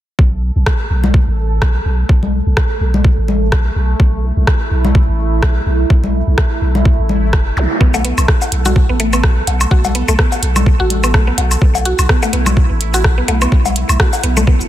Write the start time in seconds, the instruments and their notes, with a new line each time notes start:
0.19 sub bass B1, synth texture A3 A4, kick
0.56 sub bass B1
0.66 kick, cross-stick
0.90 sub bass B1
1.04 high conga
1.14 kick
1.27 sub bass A1
1.62 sub bass B1, kick, cross-stick
1.85 sub bass B1
2.09 sub bass B1, kick
2.23 high conga
2.46 sub bass B1
2.57 kick, cross-stick
2.81 sub bass B1
2.94 high conga
3.05 kick
3.18 sub bass A1
3.28 high conga
3.52 sub bass B1, kick, cross-stick
3.76 sub bass B1
4.00 sub bass B1, synth texture E4, kick
4.37 sub bass B1
4.47 kick, cross-stick
4.71 sub bass B1
4.85 high conga
4.95 kick
5.08 sub bass A1
5.43 sub bass B1, kick, cross-stick
5.66 sub bass B1
5.90 sub bass B1, kick
6.04 high conga
6.27 sub bass B1
6.38 kick, cross-stick
6.61 sub bass B1
6.75 high conga
6.85 kick
6.99 sub bass A1
7.09 high conga
7.33 sub bass F#1, kick, cross-stick
7.57 sub bass B1, zap
7.81 sub bass B1, synth arpeggio sound B3, synth texture A4, kick
7.94 synth arpeggio sound A3, cowbell, shaker
8.05 synth arpeggio sound B3, closed hi-hat
8.18 sub bass B1, high woodblock, shaker
8.28 kick, cross-stick
8.42 cowbell, shaker
8.52 sub bass B1, closed hi-hat
8.65 synth arpeggio sound F#4, high conga, high woodblock, shaker
8.76 kick
8.89 sub bass A1, synth arpeggio sound B3
9.00 synth arpeggio sound A3, closed hi-hat
9.13 synth arpeggio sound B3, high woodblock, shaker
9.23 sub bass B1, kick, cross-stick
9.47 sub bass B1, closed hi-hat, cowbell
9.61 high woodblock, shaker
9.71 sub bass B1, synth arpeggio sound F#4, kick
9.84 cowbell, high conga, shaker
9.95 synth arpeggio sound B3, closed hi-hat
10.08 sub bass B1, synth arpeggio sound A3, high woodblock, shaker
10.19 synth arpeggio sound B3, kick, cross-stick
10.32 cowbell, shaker
10.43 sub bass B1, closed hi-hat
10.56 high conga, high woodblock, shaker
10.66 kick
10.80 sub bass A1, synth arpeggio sound F#4
10.90 closed hi-hat, high conga
11.04 synth arpeggio sound B3, high woodblock, shaker
11.14 sub bass B1, synth arpeggio sound A3, kick, cross-stick
11.27 synth arpeggio sound B3
11.38 sub bass B1, closed hi-hat, cowbell
11.51 high woodblock, shaker
11.62 sub bass B1, synth texture E4, kick
11.75 cowbell, shaker
11.85 synth arpeggio sound F#4, closed hi-hat
11.99 sub bass B1, high woodblock, shaker
12.09 synth arpeggio sound B3, kick, cross-stick
12.23 synth arpeggio sound A3, cowbell, shaker
12.33 sub bass B1, synth arpeggio sound B3, closed hi-hat
12.46 high conga, high woodblock, shaker
12.57 kick
12.70 sub bass A1
12.81 closed hi-hat
12.94 synth arpeggio sound F#4, high woodblock, shaker
13.04 sub bass B1, kick, cross-stick
13.18 synth arpeggio sound B3
13.28 sub bass B1, synth arpeggio sound A3, closed hi-hat, cowbell
13.42 synth arpeggio sound B3, high woodblock, shaker
13.52 sub bass B1, kick
13.65 cowbell, high conga, shaker
13.76 closed hi-hat
13.89 sub bass B1, high woodblock, shaker
14.00 synth arpeggio sound F#4, kick, cross-stick
14.13 cowbell, shaker
14.23 sub bass B1, synth arpeggio sound B3, closed hi-hat
14.37 synth arpeggio sound A3, high conga, high woodblock, shaker
14.47 synth arpeggio sound B3, kick
14.61 sub bass F#1, shaker